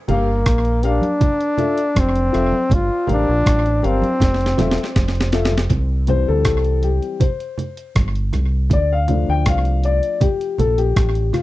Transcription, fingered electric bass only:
0.09 0.43 G1 loud
0.47 0.99 A#1 medium
1.97 2.31 F1 loud
2.34 2.51 F1 medium
2.72 2.89 G1 loud
3.10 3.27 A1 medium
3.29 3.45 A#1 medium
3.47 3.81 A1 medium
3.85 4.02 G1 medium
4.22 4.56 F1 loud
4.59 4.76 E1 medium
4.96 5.67 F1 medium
5.71 6.24 C2 loud
6.29 6.45 D2 medium
6.46 6.99 C2 medium
7.96 8.30 G1 loud
8.34 8.68 C2 medium
8.71 9.24 D2 loud
9.29 9.45 D2 medium
9.47 9.99 C2 medium
10.59 10.93 A#1 loud
10.97 11.31 A1 medium

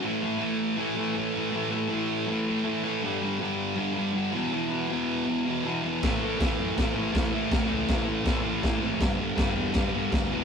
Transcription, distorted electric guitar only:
0.02 0.39 A2 loud
0.02 0.25 E3 loud
0.06 0.21 A3 loud
0.21 0.41 E3 medium
0.21 0.43 A3 medium
0.39 0.76 A2 medium
0.39 0.78 E3 medium
0.43 0.79 A3 medium
0.77 1.13 A2 medium
0.77 0.98 E3 loud
0.77 0.94 A3 loud
0.95 1.17 A3 medium
1.00 1.16 E3 medium
1.14 1.50 A2 medium
1.14 1.36 E3 medium
1.18 1.32 A3 medium
1.34 1.53 E3 medium
1.34 1.54 A3 medium
1.51 1.88 A2 loud
1.51 1.74 E3 loud
1.51 1.70 A3 loud
1.71 1.90 E3 medium
1.71 1.92 A3 medium
1.89 2.26 A2 medium
1.89 2.29 E3 medium
1.93 2.31 A3 medium
2.27 2.63 A2 loud
2.27 2.50 E3 medium
2.32 2.45 A3 loud
2.46 2.68 A3 medium
2.51 2.66 E3 medium
2.65 3.02 A2 medium
2.65 2.86 E3 medium
2.69 2.82 A3 medium
2.84 3.04 E3 medium
2.84 3.02 A3 medium
3.02 3.38 G2 loud
3.02 3.23 D3 loud
3.02 3.19 G3 loud
3.20 3.41 G3 medium
3.24 3.40 D3 medium
3.39 3.75 G2 medium
3.39 3.77 D3 medium
3.39 3.79 G3 medium
3.76 4.12 G2 loud
3.76 3.97 D3 loud
3.76 3.93 G3 loud
3.94 4.16 G3 medium
3.99 4.14 D3 medium
4.13 4.32 G2 medium
4.13 4.33 D3 medium
4.17 4.32 G3 medium
4.32 4.49 E2 medium
4.32 4.51 B2 medium
4.32 4.54 E3 loud
4.50 4.87 E2 medium
4.50 4.72 B2 loud
4.55 4.69 E3 loud
4.70 4.90 B2 medium
4.70 4.92 E3 medium
4.88 5.24 E2 medium
4.88 5.26 B2 medium
4.93 5.29 E3 medium
5.25 5.63 E2 loud
5.25 5.48 B2 loud
5.29 5.45 E3 loud
5.46 5.65 B2 medium
5.46 5.67 E3 medium
5.64 6.01 E2 medium
5.64 5.86 B2 medium
5.64 5.83 E3 medium
5.83 6.03 E3 medium
5.87 6.00 B2 medium
6.01 6.39 A2 loud
6.01 6.24 E3 loud
6.05 6.21 A3 loud
6.21 6.41 E3 medium
6.21 6.43 A3 medium
6.39 6.75 A2 medium
6.39 6.77 E3 medium
6.43 6.79 A3 medium
6.76 7.12 A2 medium
6.76 6.98 E3 loud
6.76 6.94 A3 loud
6.95 7.15 E3 medium
6.95 7.16 A3 medium
7.13 7.50 A2 medium
7.13 7.35 E3 medium
7.17 7.32 A3 medium
7.33 7.52 E3 medium
7.33 7.54 A3 medium
7.51 7.88 A2 loud
7.51 7.74 E3 loud
7.55 7.69 A3 loud
7.70 7.92 A3 medium
7.75 7.90 E3 medium
7.89 8.24 A2 medium
7.89 8.26 E3 medium
7.89 8.28 A3 medium
8.25 8.62 A2 loud
8.25 8.47 E3 loud
8.25 8.42 A3 loud
8.43 8.66 A3 medium
8.48 8.65 E3 medium
8.63 9.00 A2 medium
8.63 8.84 E3 medium
8.67 8.80 A3 loud
8.81 8.99 A3 medium
8.85 9.01 E3 medium
8.99 9.35 G2 loud
8.99 9.20 D3 loud
9.03 9.16 G3 loud
9.17 9.39 G3 medium
9.22 9.37 D3 medium
9.36 9.72 G2 medium
9.36 9.74 D3 medium
9.36 9.76 G3 medium
9.74 10.10 G2 loud
9.74 9.95 D3 loud
9.74 9.91 G3 loud
9.92 10.13 G3 medium
9.96 10.12 D3 medium
10.11 10.29 G2 medium
10.11 10.30 D3 medium
10.11 10.30 G3 loud
10.31 10.44 E2 medium
10.31 10.44 B2 loud
10.31 10.44 E3 medium

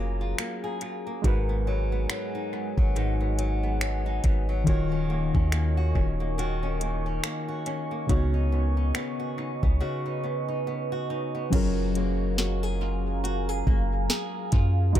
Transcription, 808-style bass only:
0.00 0.34 F#1 loud
1.24 2.06 G#1 loud
2.78 4.20 G#1 loud
4.24 4.65 G#1 medium
5.35 5.93 D#2 loud
5.95 7.20 D#1 loud
8.09 8.92 C#2 loud
9.63 9.80 C#2 loud
11.53 13.63 F#1 loud
13.67 14.08 F#1 loud
14.53 14.94 F#2 loud
14.96 15.00 G#1 loud

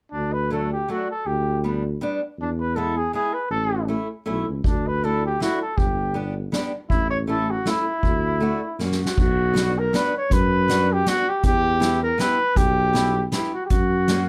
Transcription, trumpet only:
0.12 0.34 D4 medium
0.33 0.50 B4 medium
0.52 0.70 A4 medium
0.72 0.88 G4 medium
0.90 1.08 F#4 medium
1.11 1.28 A4 medium
1.26 1.63 G4 medium
2.41 2.50 D4 medium
2.60 2.77 B4 medium
2.76 2.98 A4 medium
2.97 3.13 G#4 medium
3.14 3.35 G#4 medium
3.34 3.50 B4 medium
3.51 3.86 A4 medium
4.66 4.89 D4 medium
4.87 5.05 B4 medium
5.04 5.23 A4 medium
5.26 5.40 G4 medium
5.42 5.60 F#4 medium
5.62 5.79 A4 medium
5.78 6.15 G4 medium
6.90 7.09 E4 loud
7.10 7.18 C#5 medium
7.30 7.52 A4 medium
7.50 7.71 F#4 medium
7.69 8.81 E4 medium
9.03 9.18 F#4 medium
9.19 9.80 F#4 medium
9.78 9.97 A#4 medium
9.96 10.15 B4 loud
10.17 10.34 C#5 medium
10.33 10.94 B4 loud
10.92 11.09 G4 medium
11.08 11.30 F#4 loud
11.29 11.45 G4 medium
11.45 11.98 G4 loud
12.03 12.21 A#4 medium
12.20 12.58 B4 loud
12.57 13.24 G4 loud
13.54 13.63 F#4 medium
13.66 13.71 G4 medium
13.70 14.29 F#4 medium

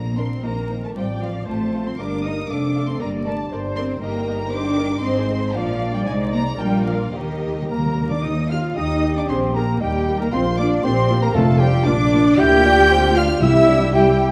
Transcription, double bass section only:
0.00 0.37 A#1 medium
0.43 0.89 A#1 soft
0.96 1.41 A1 medium
1.47 1.93 A1 soft
1.99 2.44 G1 medium
2.50 2.94 F1 medium
3.00 3.45 G1 medium
3.51 3.96 G1 medium
4.02 4.99 G1 medium
5.03 5.54 G#1 medium
5.54 6.06 A#1 medium
6.06 6.56 C2 medium
6.59 7.14 A#1 medium
7.14 8.01 D#2 medium
8.24 8.70 D#2 medium
8.76 9.23 D#2 medium
9.29 9.74 A#1 medium
9.81 10.26 D#2 medium
10.32 10.78 A#1 medium
10.84 11.29 A#1 medium
11.35 11.80 F1 medium
11.86 12.33 A#1 medium
12.40 13.38 D2 medium
13.42 14.31 C2 medium

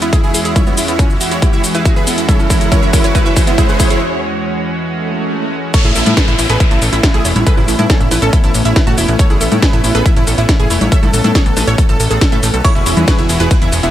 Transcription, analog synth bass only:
5.85 5.93 A1 medium
5.95 6.04 A1 loud
6.06 6.14 A2 medium
6.28 6.36 A1 medium
6.39 6.47 A1 loud
6.50 6.58 A1 medium
6.71 6.79 A1 medium
6.82 6.90 A1 loud
6.93 7.01 A1 medium
7.14 7.22 A1 medium
7.25 7.33 E1 loud
7.36 7.44 A1 medium
7.57 7.66 A1 medium
7.68 7.76 A1 medium
7.79 7.87 A2 medium
8.01 8.09 A1 medium
8.11 8.19 A1 loud
8.22 8.30 A1 medium
8.44 8.52 A1 medium
8.55 8.63 A1 loud
8.65 8.73 A1 medium
8.87 8.95 A1 medium
8.98 9.06 E1 loud
9.09 9.17 A1 loud
9.30 9.38 A1 medium
9.41 9.49 A1 loud
9.52 9.60 A2 medium
9.73 9.81 A1 medium
9.84 9.92 A1 medium
9.95 10.03 A1 medium
10.16 10.25 A1 medium
10.27 10.35 A1 loud
10.38 10.46 A1 medium
10.60 10.68 A1 medium
10.70 10.78 E1 loud
10.81 10.89 A1 medium
11.03 11.11 A1 medium
11.13 11.22 A1 loud
11.24 11.32 A2 medium
11.46 11.54 A1 medium
11.57 11.65 A1 loud
11.67 11.76 A1 medium
11.89 11.97 A1 medium
12.00 12.08 A1 loud
12.11 12.19 A1 loud
12.32 12.40 A2 medium
12.43 12.51 A1 medium
12.54 12.62 B1 loud
12.75 12.84 E1 medium
12.86 12.94 E1 loud
12.97 13.05 E2 medium
13.19 13.27 E1 medium
13.29 13.37 E1 loud
13.40 13.48 E1 medium
13.62 13.70 E1 medium
13.72 13.81 E1 loud
13.83 13.91 E1 medium

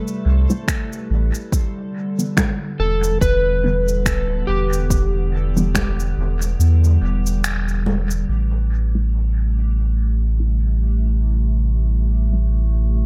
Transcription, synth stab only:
0.50 0.64 G3 medium
0.50 0.64 A3 medium
0.50 0.64 C4 medium
0.50 0.64 E4 medium
2.18 2.33 D3 medium
2.18 2.33 E3 medium
2.18 2.33 G3 medium
2.18 2.33 B3 medium
3.64 3.83 D3 medium
3.64 3.83 E3 medium
3.64 3.83 G3 medium
3.64 3.83 B3 medium
5.56 5.71 D3 medium
5.56 5.71 E3 medium
5.56 5.71 G3 medium
5.56 5.71 B3 medium
8.95 9.09 G3 medium
8.95 9.09 A3 medium
8.95 9.09 C4 medium
8.95 9.09 E4 medium
10.40 10.59 G3 medium
10.40 10.59 A3 medium
10.40 10.59 C4 medium
10.40 10.59 E4 medium
12.33 12.47 G3 medium
12.33 12.47 A3 medium
12.33 12.47 C4 medium
12.33 12.47 E4 medium

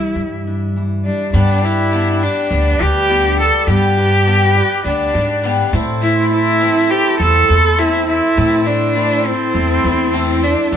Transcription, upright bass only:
0.16 1.08 G2 medium
1.33 2.25 G2 medium
2.51 2.74 D2 medium
2.80 3.49 D2 medium
3.67 4.60 G2 medium
4.85 5.08 D2 medium
5.15 5.61 G#2 medium
5.73 6.65 A2 loud
7.20 7.43 E2 medium
7.49 8.19 E2 medium
8.38 9.30 A2 loud
9.54 9.78 E2 medium
9.84 10.53 E2 medium
10.72 10.77 D2 medium

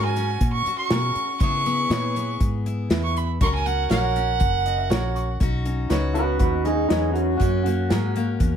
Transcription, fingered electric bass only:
0.00 0.39 G#2 medium
0.41 0.64 A#2 medium
0.66 muted fingered electric bass stroke soft
0.90 1.14 B2 medium
1.15 muted fingered electric bass stroke soft
1.41 1.89 C#3 medium
1.90 2.38 A#2 loud
2.41 2.89 G#2 medium
2.90 3.38 E2 medium
3.41 3.89 C#2 medium
3.90 4.39 A#1 medium
4.41 4.89 F#1 medium
4.90 5.39 A#1 medium
5.41 5.89 B1 medium
5.90 6.38 C#2 medium
6.40 6.88 D#2 medium
6.90 7.39 E2 medium
7.41 7.89 F#2 medium
7.90 8.39 G#2 medium
8.40 8.57 E2 medium

